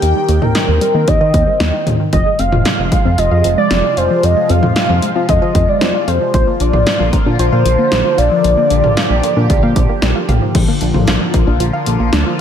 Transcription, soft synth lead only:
Already playing: G4
0.42 A#4
0.82 A#4
1.08 D#5
2.13 D#5
2.39 F5
3.18 D#5
3.58 D5
3.97 C5
4.24 D#5
4.50 F5
5.29 D#5
5.69 D5
6.08 C5
6.34 C5
6.61 D5
7.39 C5
8.18 D5

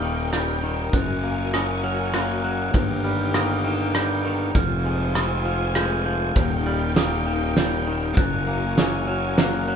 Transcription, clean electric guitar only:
Already playing: D#2 G3 A#3
0.03 D#3
0.33 G3
0.63 D#3
0.93 F#2
1.23 A#3
1.53 C#4
1.84 F#3
2.13 A#3
2.44 F#3
2.74 D#2
3.04 G3
3.35 A#3
3.65 D#3
3.95 G3
4.25 D#3
4.55 F2
4.85 G#3
5.15 C4
5.45 F3
5.75 G#3
6.06 F3
6.36 D#2
6.66 G3
6.96 A#3
7.27 D#3
7.57 G3
7.87 D#3
8.17 F#2
8.47 A#3
8.78 C#4
9.07 F#3
9.38 A#3
9.68 F#3

